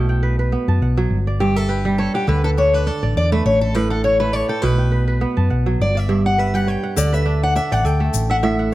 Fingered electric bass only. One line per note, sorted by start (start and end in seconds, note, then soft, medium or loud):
0.00 0.54 B1 loud
0.68 0.79 F#2 medium
0.81 1.05 B1 medium
1.10 2.06 G1 loud
2.28 2.89 D2 medium
3.03 3.14 A1 medium
3.16 3.40 E2 medium
3.45 4.41 A1 loud
4.63 5.24 B1 medium
5.37 5.48 F#2 medium
5.51 5.75 B1 medium
5.80 6.75 G1 medium
6.97 7.58 D2 medium
7.72 7.83 A1 medium
7.84 8.08 D2 medium
8.14 8.74 A1 medium